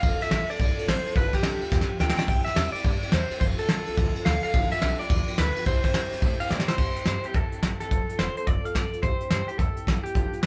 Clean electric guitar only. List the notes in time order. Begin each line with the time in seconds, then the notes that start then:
Already playing: F5
0.22 E5
0.32 E5
0.50 D5
0.88 C5
1.17 B4
1.35 G4
2.01 G5
2.17 G5
2.45 E5
2.72 D5
3.13 C5
3.40 C5
3.59 A4
4.25 F5
4.43 F5
4.72 E5
4.99 D5
5.39 B4
5.67 C5
5.85 C5
6.40 F5
6.50 D5
6.68 C5
7.08 C5
7.25 G4
7.35 A4
7.80 A4
8.19 C5
8.37 C5
8.47 D5
8.65 F5
8.75 D5
9.03 C5
9.32 C5
9.48 G4
9.58 A4
10.03 G4
10.43 B4